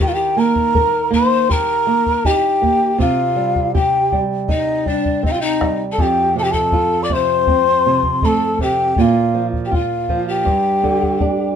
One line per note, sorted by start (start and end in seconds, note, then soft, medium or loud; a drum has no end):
0.00 2.96 D#3 medium
0.00 0.10 G5 medium
0.00 bombo low medium
0.07 0.16 F4 medium
0.07 0.15 F5 medium
0.14 0.40 G4 medium
0.14 0.40 G5 medium
0.37 0.73 A#3 medium
0.37 1.13 A#4 medium
0.37 1.13 A#5 loud
0.56 bombo low medium
0.75 1.11 A#4 medium
0.75 bombo low medium
1.10 1.48 A#3 medium
1.10 1.52 C5 medium
1.10 bombo low medium
1.15 1.53 C6 loud
1.49 1.86 G4 medium
1.49 2.27 A#4 medium
1.49 2.27 A#5 loud
1.49 bombo low medium
1.87 2.23 A#3 medium
2.06 bombo low medium
2.25 2.61 D#4 medium
2.25 3.00 G4 medium
2.25 3.00 G5 loud
2.25 bombo low medium
2.62 2.98 A#3 soft
2.62 bombo low medium
2.98 5.94 C3 medium
2.98 3.71 F4 medium
2.98 3.71 F5 medium
2.98 bombo low medium
3.36 3.73 G3 medium
3.55 bombo low medium
3.75 4.11 G4 medium
3.75 4.20 G4 medium
3.75 4.19 G5 medium
3.75 bombo low medium
4.12 4.48 G3 medium
4.12 bombo low medium
4.48 4.85 D#4 medium
4.48 4.90 D#4 medium
4.48 4.89 D#5 medium
4.48 bombo low medium
4.86 5.22 G3 medium
4.86 5.25 D4 medium
4.86 5.24 D5 medium
4.86 bombo low medium
5.05 bombo low medium
5.23 5.60 C4 medium
5.23 5.34 D#4 medium
5.23 5.33 D#5 medium
5.23 bombo low medium
5.32 5.43 F4 medium
5.32 5.42 F5 medium
5.41 5.82 D#4 medium
5.41 5.81 D#5 medium
5.61 5.98 G3 medium
5.61 bombo rim soft
5.61 bombo low medium
5.92 6.03 A4 medium
5.92 6.03 A5 medium
5.98 8.94 F2 medium
5.98 6.37 G4 medium
5.98 6.37 G5 medium
5.98 bombo low medium
6.36 6.72 C3 medium
6.36 6.45 A4 medium
6.36 6.45 A5 medium
6.43 6.54 G4 medium
6.43 6.53 G5 medium
6.51 7.05 A4 medium
6.51 7.05 A5 medium
6.51 bombo low medium
6.72 7.10 F4 medium
6.72 bombo low medium
7.03 7.15 D5 medium
7.03 7.15 D6 medium
7.09 7.47 C3 medium
7.09 bombo low medium
7.13 8.02 C5 medium
7.13 8.27 C6 loud
7.47 7.84 C4 medium
7.47 bombo low medium
7.86 8.22 C3 medium
8.03 bombo low medium
8.22 8.59 A3 medium
8.22 8.61 A4 medium
8.22 8.61 A5 medium
8.22 bombo low medium
8.59 8.97 C3 medium
8.59 9.00 G4 medium
8.59 9.02 G5 medium
8.59 bombo low medium
8.96 10.43 A#2 medium
8.96 9.46 F4 medium
8.96 bombo low medium
9.01 9.47 F5 medium
9.34 9.71 F3 medium
9.53 bombo low medium
9.65 9.75 G4 soft
9.65 9.77 G5 medium
9.71 10.08 F4 medium
9.71 10.28 F4 medium
9.71 10.29 F5 medium
9.71 bombo low medium
10.09 10.46 F3 medium
10.09 bombo low medium
10.28 11.55 G4 medium
10.28 11.55 G5 medium
10.45 11.56 G2 medium
10.45 bombo low medium
10.83 11.20 D3 medium
10.83 bombo low soft
11.03 bombo low medium
11.20 11.56 D4 medium
11.20 bombo low medium